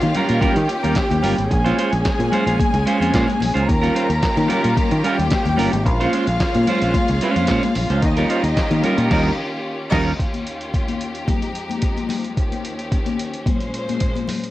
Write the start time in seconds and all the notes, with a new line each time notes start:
Already playing: D#3 A#3 C#4 F4 G4 F5
0.01 D#3, muted clean electric guitar stroke, closed hi-hat, high conga
0.14 G3 C#4 F4 A#4, closed hi-hat, low conga
0.29 A#2 G3 C#4 F4 A#4, closed hi-hat
0.41 G3 C#4 F4 G4 A#4 G5, kick, closed hi-hat, high conga, low conga
0.55 D#3, muted clean electric guitar stroke, closed hi-hat, muted conga
0.68 muted clean electric guitar stroke, closed hi-hat
0.83 D#2 G3 C#4 F4 A#4, closed hi-hat, high conga
0.95 kick, snare, clap, closed hi-hat, muted conga
1.10 D#2, muted clean electric guitar stroke, closed hi-hat, high conga
1.23 G1 G3 C#4 F4 A#4, open hi-hat, high conga, low conga
1.37 G#1, muted clean electric guitar stroke, closed hi-hat
1.50 A#1 G#3 A#3 G#4 G#5, muted clean electric guitar stroke, kick, closed hi-hat
1.65 G#3 C#4 F4 C5, snare, closed hi-hat, muted conga, high conga
1.78 G#3 C#4 F4 C5, closed hi-hat
1.93 A#1, muted clean electric guitar stroke, closed hi-hat
2.04 muted clean electric guitar stroke, muted fingered electric bass stroke, kick, snare, clap, closed hi-hat, muted conga
2.19 A#2, muted clean electric guitar stroke, closed hi-hat, muted conga, high conga
2.32 G#3 C#4 F4 C5, closed hi-hat, low conga
2.46 A#1 G#3 C#4 F4 C5, closed hi-hat
2.60 kick, closed hi-hat, muted conga, high conga, low conga
2.74 C#2, muted clean electric guitar stroke, closed hi-hat, muted conga
2.86 G#3 C#4 F4 C5, closed hi-hat
3.00 F2 G#3 C#4 F4 C5, closed hi-hat, high conga
3.13 A#2 G#3 C#4 F4 C5, kick, snare, clap, closed hi-hat, muted conga
3.28 muted clean electric guitar stroke, closed hi-hat, high conga
3.40 A#1, muted clean electric guitar stroke, open hi-hat, high conga, low conga
3.54 C#2 G#3 C#4 F4 C5, closed hi-hat
3.68 D#2 D#3 F4 G4 A#4 A#5, muted clean electric guitar stroke, kick, closed hi-hat, muted conga
3.82 G3 C#4 F4 A#4, snare, closed hi-hat, muted conga, high conga
3.94 G3 C#4 F4 C5, closed hi-hat
4.09 D#2, muted clean electric guitar stroke, closed hi-hat
4.22 muted clean electric guitar stroke, kick, snare, clap, closed hi-hat, muted conga
4.36 D#3, muted clean electric guitar stroke, closed hi-hat, high conga
4.48 G3 C#4 F4 A#4, closed hi-hat, low conga
4.63 A#2 G3 C#4 F4 A#4, closed hi-hat
4.76 muted clean electric guitar stroke, kick, closed hi-hat, muted conga, high conga, low conga
4.91 D#3, muted clean electric guitar stroke, closed hi-hat, muted conga
5.03 G3 C#4 F4 G4 A#4 G5, closed hi-hat
5.18 D#2, muted clean electric guitar stroke, closed hi-hat, high conga
5.30 muted clean electric guitar stroke, kick, snare, clap, closed hi-hat, muted conga
5.45 D#2, muted clean electric guitar stroke, closed hi-hat, muted conga, high conga
5.57 G1 G3 C#4 F4 A#4, open hi-hat, high conga, low conga
5.72 G#1, muted clean electric guitar stroke, closed hi-hat
5.85 A#1 G#3 C#4 F4 F5, muted clean electric guitar stroke, kick, closed hi-hat
6.00 G#3 C#4 F4 C5, snare, closed hi-hat, muted conga, high conga
6.13 G#3 C#4 F4 C5, closed hi-hat
6.27 A#1, muted clean electric guitar stroke, closed hi-hat
6.40 muted clean electric guitar stroke, kick, snare, clap, closed hi-hat
6.54 A#2, muted clean electric guitar stroke, closed hi-hat, muted conga, high conga
6.67 G#3 C#4 F4 C5, closed hi-hat, low conga
6.82 A#1 G#3 C#4 F4 C5, closed hi-hat
6.94 muted clean electric guitar stroke, kick, closed hi-hat, muted conga, high conga, low conga
7.08 C#2, muted clean electric guitar stroke, closed hi-hat
7.21 G#3 C#4 F4 C5, closed hi-hat
7.36 F2 G#3 C#4 F4 C5, closed hi-hat, high conga
7.47 A#2 G#3 C#4 F4 C5, kick, snare, clap, closed hi-hat
7.63 muted clean electric guitar stroke, closed hi-hat, high conga
7.75 A#1, muted clean electric guitar stroke, open hi-hat, high conga, low conga
7.90 C#2 G#3 C#4 F4 C5, closed hi-hat
8.02 D#2 D#3 C#4 D#4 F4 G4 D#5, muted clean electric guitar stroke, kick, closed hi-hat, muted conga
8.17 G3 C#4 F4 A#4, snare, closed hi-hat, muted conga, high conga
8.29 G3 C#4 F4 C5, closed hi-hat
8.43 D#2, muted clean electric guitar stroke, closed hi-hat
8.57 muted clean electric guitar stroke, kick, snare, clap, closed hi-hat, muted conga
8.71 D#3, muted clean electric guitar stroke, closed hi-hat, muted conga, high conga
8.83 G3 C#4 F4 A#4, closed hi-hat, low conga
8.97 A#2 G3 C#4 F4 A#4, closed hi-hat
9.10 D#2 G3 C#4 D#4 F4 A#4 D#5, kick, snare, crash
9.91 D#2 G3 C#4 D#4 F4 A#4 D#5, kick, snare, crash
10.18 D#2 D#3 C#4 F4 G4, kick, closed hi-hat
10.34 closed hi-hat, muted conga, high conga
10.47 closed hi-hat
10.61 closed hi-hat
10.73 kick, closed hi-hat, muted conga
10.88 closed hi-hat, muted conga, high conga
11.01 closed hi-hat
11.15 closed hi-hat
11.27 F2 F3 G#3 D#4, kick, closed hi-hat, muted conga, high conga, low conga
11.42 closed hi-hat, muted conga
11.55 closed hi-hat
11.70 closed hi-hat, high conga
11.82 kick, closed hi-hat, muted conga
11.97 closed hi-hat, high conga
12.09 open hi-hat, high conga, low conga
12.24 closed hi-hat
12.37 D#2 D#3 C#4 G4, kick, closed hi-hat
12.52 closed hi-hat, muted conga, high conga
12.65 closed hi-hat
12.79 closed hi-hat
12.92 kick, closed hi-hat
13.06 closed hi-hat, muted conga, high conga
13.19 closed hi-hat
13.33 closed hi-hat
13.46 A#2 F3 G#3 C5, kick, closed hi-hat, high conga, low conga
13.60 closed hi-hat, muted conga
13.74 closed hi-hat
13.89 closed hi-hat, high conga
14.00 kick, closed hi-hat, muted conga
14.15 closed hi-hat, muted conga, high conga
14.28 open hi-hat, high conga, low conga
14.44 closed hi-hat